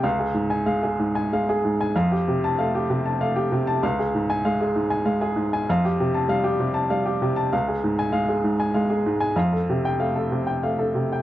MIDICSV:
0, 0, Header, 1, 2, 480
1, 0, Start_track
1, 0, Tempo, 630252
1, 30, Time_signature, 3, 2, 24, 8
1, 2911, Tempo, 616016
1, 7231, Tempo, 638298
1, 8625, End_track
2, 0, Start_track
2, 0, Title_t, "Upright piano"
2, 0, Program_c, 0, 0
2, 0, Control_c, 0, 64, 127
2, 26, Note_on_c, 0, 77, 61
2, 27, Note_on_c, 0, 37, 67
2, 43, Control_c, 0, 64, 0
2, 145, Note_on_c, 0, 68, 50
2, 180, Control_c, 0, 64, 127
2, 219, Note_off_c, 0, 77, 0
2, 262, Note_on_c, 0, 44, 56
2, 338, Note_off_c, 0, 68, 0
2, 382, Note_on_c, 0, 80, 53
2, 457, Note_off_c, 0, 44, 0
2, 493, Note_off_c, 0, 37, 0
2, 504, Note_on_c, 0, 77, 61
2, 505, Note_on_c, 0, 56, 51
2, 578, Note_off_c, 0, 80, 0
2, 632, Note_on_c, 0, 68, 55
2, 700, Note_off_c, 0, 77, 0
2, 758, Note_on_c, 0, 44, 59
2, 825, Note_off_c, 0, 68, 0
2, 879, Note_on_c, 0, 80, 55
2, 949, Note_off_c, 0, 44, 0
2, 962, Note_off_c, 0, 56, 0
2, 1011, Note_on_c, 0, 56, 47
2, 1014, Note_on_c, 0, 77, 57
2, 1071, Note_off_c, 0, 80, 0
2, 1135, Note_on_c, 0, 68, 62
2, 1199, Note_off_c, 0, 77, 0
2, 1254, Note_on_c, 0, 44, 54
2, 1320, Note_off_c, 0, 68, 0
2, 1376, Note_on_c, 0, 80, 56
2, 1440, Note_off_c, 0, 44, 0
2, 1457, Note_off_c, 0, 56, 0
2, 1488, Note_off_c, 0, 80, 0
2, 1489, Note_on_c, 0, 77, 63
2, 1491, Note_on_c, 0, 41, 70
2, 1493, Control_c, 0, 64, 0
2, 1612, Note_on_c, 0, 67, 52
2, 1625, Control_c, 0, 64, 127
2, 1676, Note_off_c, 0, 77, 0
2, 1736, Note_on_c, 0, 48, 57
2, 1797, Note_off_c, 0, 67, 0
2, 1859, Note_on_c, 0, 81, 57
2, 1919, Note_off_c, 0, 48, 0
2, 1949, Note_off_c, 0, 41, 0
2, 1968, Note_on_c, 0, 77, 56
2, 1971, Note_on_c, 0, 57, 54
2, 2039, Note_off_c, 0, 81, 0
2, 2094, Note_on_c, 0, 67, 57
2, 2154, Note_off_c, 0, 77, 0
2, 2209, Note_on_c, 0, 48, 62
2, 2277, Note_off_c, 0, 67, 0
2, 2327, Note_on_c, 0, 81, 53
2, 2394, Note_off_c, 0, 48, 0
2, 2412, Note_off_c, 0, 57, 0
2, 2444, Note_on_c, 0, 57, 52
2, 2444, Note_on_c, 0, 77, 61
2, 2513, Note_off_c, 0, 81, 0
2, 2558, Note_on_c, 0, 67, 65
2, 2631, Note_off_c, 0, 77, 0
2, 2681, Note_on_c, 0, 48, 59
2, 2746, Note_off_c, 0, 67, 0
2, 2797, Note_on_c, 0, 81, 61
2, 2867, Note_off_c, 0, 48, 0
2, 2884, Note_off_c, 0, 57, 0
2, 2913, Note_off_c, 0, 81, 0
2, 2916, Note_on_c, 0, 37, 68
2, 2919, Note_on_c, 0, 77, 65
2, 2924, Control_c, 0, 64, 0
2, 3034, Control_c, 0, 64, 127
2, 3041, Note_on_c, 0, 68, 49
2, 3108, Note_off_c, 0, 77, 0
2, 3163, Note_on_c, 0, 44, 58
2, 3229, Note_off_c, 0, 68, 0
2, 3281, Note_on_c, 0, 80, 59
2, 3350, Note_off_c, 0, 44, 0
2, 3381, Note_off_c, 0, 37, 0
2, 3400, Note_on_c, 0, 77, 63
2, 3401, Note_on_c, 0, 56, 52
2, 3468, Note_off_c, 0, 80, 0
2, 3522, Note_on_c, 0, 68, 55
2, 3587, Note_off_c, 0, 77, 0
2, 3640, Note_on_c, 0, 44, 58
2, 3708, Note_off_c, 0, 68, 0
2, 3754, Note_on_c, 0, 80, 56
2, 3827, Note_off_c, 0, 44, 0
2, 3844, Note_off_c, 0, 56, 0
2, 3870, Note_on_c, 0, 56, 49
2, 3873, Note_on_c, 0, 77, 56
2, 3945, Note_off_c, 0, 80, 0
2, 3995, Note_on_c, 0, 68, 66
2, 4065, Note_off_c, 0, 77, 0
2, 4110, Note_on_c, 0, 44, 63
2, 4186, Note_off_c, 0, 68, 0
2, 4243, Note_on_c, 0, 80, 57
2, 4304, Note_off_c, 0, 44, 0
2, 4321, Note_off_c, 0, 56, 0
2, 4358, Note_off_c, 0, 80, 0
2, 4368, Control_c, 0, 64, 0
2, 4370, Note_on_c, 0, 41, 72
2, 4372, Note_on_c, 0, 77, 65
2, 4473, Control_c, 0, 64, 127
2, 4490, Note_on_c, 0, 67, 56
2, 4555, Note_off_c, 0, 77, 0
2, 4609, Note_on_c, 0, 48, 57
2, 4674, Note_off_c, 0, 67, 0
2, 4720, Note_on_c, 0, 81, 60
2, 4793, Note_off_c, 0, 48, 0
2, 4828, Note_off_c, 0, 41, 0
2, 4830, Note_on_c, 0, 55, 55
2, 4836, Note_on_c, 0, 77, 68
2, 4908, Note_off_c, 0, 81, 0
2, 4950, Note_on_c, 0, 67, 65
2, 5026, Note_off_c, 0, 77, 0
2, 5074, Note_on_c, 0, 48, 57
2, 5143, Note_off_c, 0, 67, 0
2, 5185, Note_on_c, 0, 81, 58
2, 5264, Note_off_c, 0, 48, 0
2, 5279, Note_off_c, 0, 55, 0
2, 5311, Note_on_c, 0, 77, 58
2, 5312, Note_on_c, 0, 55, 52
2, 5380, Note_off_c, 0, 81, 0
2, 5431, Note_on_c, 0, 67, 59
2, 5503, Note_off_c, 0, 77, 0
2, 5558, Note_on_c, 0, 48, 68
2, 5623, Note_off_c, 0, 67, 0
2, 5670, Note_on_c, 0, 81, 62
2, 5746, Note_off_c, 0, 48, 0
2, 5760, Note_off_c, 0, 55, 0
2, 5791, Note_off_c, 0, 81, 0
2, 5797, Note_on_c, 0, 77, 63
2, 5798, Note_on_c, 0, 37, 66
2, 5807, Control_c, 0, 64, 0
2, 5917, Note_on_c, 0, 68, 48
2, 5944, Control_c, 0, 64, 127
2, 5987, Note_off_c, 0, 77, 0
2, 6040, Note_on_c, 0, 44, 65
2, 6108, Note_off_c, 0, 68, 0
2, 6157, Note_on_c, 0, 80, 58
2, 6230, Note_off_c, 0, 44, 0
2, 6264, Note_off_c, 0, 37, 0
2, 6264, Note_on_c, 0, 56, 49
2, 6264, Note_on_c, 0, 77, 66
2, 6349, Note_off_c, 0, 80, 0
2, 6388, Note_on_c, 0, 68, 53
2, 6461, Note_off_c, 0, 77, 0
2, 6509, Note_on_c, 0, 44, 57
2, 6582, Note_off_c, 0, 68, 0
2, 6631, Note_on_c, 0, 80, 56
2, 6701, Note_off_c, 0, 44, 0
2, 6715, Note_off_c, 0, 56, 0
2, 6744, Note_on_c, 0, 77, 56
2, 6750, Note_on_c, 0, 56, 52
2, 6821, Note_off_c, 0, 80, 0
2, 6865, Note_on_c, 0, 68, 56
2, 6938, Note_off_c, 0, 77, 0
2, 6994, Note_on_c, 0, 44, 62
2, 7059, Note_off_c, 0, 68, 0
2, 7105, Note_on_c, 0, 80, 61
2, 7184, Note_off_c, 0, 44, 0
2, 7199, Note_off_c, 0, 56, 0
2, 7226, Note_on_c, 0, 41, 71
2, 7228, Note_off_c, 0, 80, 0
2, 7228, Note_on_c, 0, 77, 58
2, 7243, Control_c, 0, 64, 0
2, 7352, Note_on_c, 0, 69, 50
2, 7363, Control_c, 0, 64, 127
2, 7417, Note_off_c, 0, 77, 0
2, 7479, Note_on_c, 0, 48, 52
2, 7540, Note_off_c, 0, 69, 0
2, 7596, Note_on_c, 0, 79, 55
2, 7662, Note_off_c, 0, 48, 0
2, 7688, Note_off_c, 0, 41, 0
2, 7704, Note_on_c, 0, 57, 52
2, 7706, Note_on_c, 0, 77, 55
2, 7781, Note_off_c, 0, 79, 0
2, 7826, Note_on_c, 0, 69, 53
2, 7896, Note_off_c, 0, 77, 0
2, 7945, Note_on_c, 0, 48, 53
2, 8016, Note_off_c, 0, 69, 0
2, 8059, Note_on_c, 0, 79, 48
2, 8136, Note_off_c, 0, 48, 0
2, 8153, Note_off_c, 0, 57, 0
2, 8182, Note_on_c, 0, 57, 42
2, 8183, Note_on_c, 0, 77, 47
2, 8253, Note_off_c, 0, 79, 0
2, 8301, Note_on_c, 0, 69, 52
2, 8377, Note_off_c, 0, 77, 0
2, 8422, Note_on_c, 0, 48, 52
2, 8498, Note_off_c, 0, 69, 0
2, 8553, Note_on_c, 0, 79, 46
2, 8621, Note_off_c, 0, 48, 0
2, 8625, Note_off_c, 0, 57, 0
2, 8625, Note_off_c, 0, 79, 0
2, 8625, End_track
0, 0, End_of_file